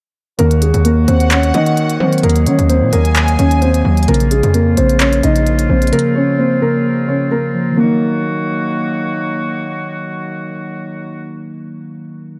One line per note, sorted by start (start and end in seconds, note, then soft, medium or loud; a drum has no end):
0.39 0.73 D#2 loud
0.39 4.04 D#3 medium
0.39 1.07 D#3 loud
0.39 4.04 F#3 medium
0.39 5.89 A#3 medium
0.39 0.58 A#3 medium
0.39 2.21 F#4 medium
0.39 0.58 A#4 loud
0.39 closed hi-hat medium
0.51 closed hi-hat medium
0.62 0.81 G#3 medium
0.62 0.81 G#4 medium
0.62 closed hi-hat medium
0.74 1.07 D#2 loud
0.74 closed hi-hat medium
0.85 2.00 A#3 medium
0.85 1.04 A#3 medium
0.85 1.04 A#4 medium
0.85 closed hi-hat medium
1.08 1.52 D#2 loud
1.08 1.53 D#3 medium
1.08 1.27 C4 medium
1.08 1.27 C5 medium
1.08 2.19 F#5 medium
1.08 closed hi-hat medium
1.20 closed hi-hat medium
1.31 1.50 C#4 medium
1.31 1.50 C#5 medium
1.31 clap loud
1.31 closed hi-hat medium
1.43 closed hi-hat medium
1.54 1.98 D#3 loud
1.54 2.22 D#3 medium
1.54 1.98 D#4 medium
1.54 1.97 D#5 medium
1.54 closed hi-hat medium
1.66 closed hi-hat medium
1.77 closed hi-hat medium
1.89 closed hi-hat medium
2.00 2.22 D#3 loud
2.00 3.16 F#3 medium
2.00 2.20 C4 medium
2.00 2.19 C5 medium
2.13 closed hi-hat soft
2.18 closed hi-hat medium
2.23 2.48 D#2 loud
2.23 2.91 D#3 loud
2.23 2.43 A#3 medium
2.23 4.06 G#4 medium
2.23 2.42 A#4 loud
2.23 closed hi-hat medium
2.29 closed hi-hat medium
2.36 closed hi-hat medium
2.46 2.58 D#3 loud
2.46 2.66 C#4 medium
2.46 2.65 C#5 medium
2.46 closed hi-hat loud
2.59 2.83 D#2 loud
2.59 closed hi-hat medium
2.69 3.85 A#3 medium
2.69 2.89 C4 medium
2.69 2.88 C5 medium
2.69 closed hi-hat medium
2.82 2.92 A#2 loud
2.93 3.37 D#2 loud
2.93 3.38 D#3 medium
2.93 3.36 A#3 medium
2.93 3.36 A#4 medium
2.93 4.04 G#5 medium
2.93 closed hi-hat medium
3.05 closed hi-hat medium
3.16 clap loud
3.16 closed hi-hat medium
3.28 closed hi-hat medium
3.39 3.83 D#2 loud
3.39 4.08 D#3 medium
3.39 3.58 C#4 medium
3.39 3.58 C#5 medium
3.39 closed hi-hat medium
3.51 closed hi-hat medium
3.62 3.81 C4 medium
3.62 3.81 C5 medium
3.62 closed hi-hat medium
3.74 closed hi-hat medium
3.85 4.07 D#2 loud
3.85 4.08 F#3 medium
3.97 closed hi-hat soft
4.03 closed hi-hat medium
4.08 4.42 A#1 loud
4.08 4.76 C#3 loud
4.08 7.74 C#3 medium
4.08 7.73 F3 medium
4.08 4.28 A#3 medium
4.08 7.73 F4 medium
4.08 4.27 A#4 loud
4.08 closed hi-hat medium
4.14 closed hi-hat medium
4.20 closed hi-hat medium
4.31 4.50 G#3 medium
4.31 4.50 G#4 medium
4.31 closed hi-hat medium
4.43 4.76 F2 loud
4.43 closed hi-hat medium
4.54 5.70 A#3 loud
4.54 4.74 A#3 medium
4.54 4.73 A#4 medium
4.54 closed hi-hat medium
4.77 5.22 A#1 loud
4.77 5.22 C#3 medium
4.77 4.97 C4 medium
4.77 4.96 C5 medium
4.77 closed hi-hat medium
4.89 closed hi-hat medium
5.00 5.20 C#4 medium
5.00 5.19 C#5 medium
5.00 clap loud
5.00 closed hi-hat medium
5.13 closed hi-hat medium
5.23 5.68 A#1 loud
5.23 5.91 C#3 medium
5.23 5.67 D#4 medium
5.23 5.67 D#5 medium
5.23 closed hi-hat medium
5.36 closed hi-hat medium
5.47 closed hi-hat medium
5.59 closed hi-hat medium
5.69 5.92 A#1 loud
5.69 6.85 F3 medium
5.69 5.89 C4 medium
5.69 5.88 C5 medium
5.82 closed hi-hat soft
5.87 closed hi-hat medium
5.92 6.61 C#3 medium
5.92 6.12 A#3 medium
5.92 7.75 C4 medium
5.92 6.11 A#4 loud
5.92 closed hi-hat medium
5.99 closed hi-hat medium
6.16 6.35 C#4 medium
6.16 6.35 C#5 medium
6.39 7.54 A#3 medium
6.39 6.58 C4 medium
6.39 6.58 C5 medium
6.62 7.07 C#3 medium
6.62 7.06 A#3 medium
6.62 7.05 A#4 medium
7.08 7.77 C#3 medium
7.08 7.28 C#4 medium
7.08 7.27 C#5 medium
7.31 7.75 A#3 medium
7.31 7.75 A#4 medium
7.55 7.77 F3 medium
7.71 11.36 D#3 medium
7.71 11.40 F#3 medium
7.77 11.42 D#3 medium
7.77 11.42 F#3 medium
7.77 11.42 A#3 medium
7.77 9.12 A#3 medium
7.77 11.44 A#3 medium
7.77 11.42 F#4 medium
7.83 11.48 D#4 loud